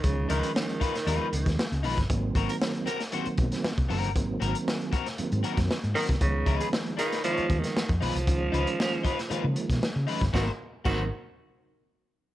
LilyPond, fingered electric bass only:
\new Staff \with { instrumentName = "Fingered electric bass" } { \clef bass \time 4/4 \key aes \mixolydian \tempo 4 = 116 des,8 des,16 r4 r16 ees,16 r16 des,16 ees,16 r16 des,16 ces,16 g,,16 | aes,,8 aes,,16 r4. r16 ces,16 r8 c,16 ges,,16 g,,16 | aes,,8 aes,,16 r4. aes,16 r16 ges,16 r16 aes,16 r16 c,16 | des,8 des,16 r4. r16 ees,16 r8 f,16 ces,16 c,16 |
des,8 des,16 r4. des16 r16 ces16 r16 des16 r16 g,,16 | aes,,16 r8. aes,,8 r2 r8 | }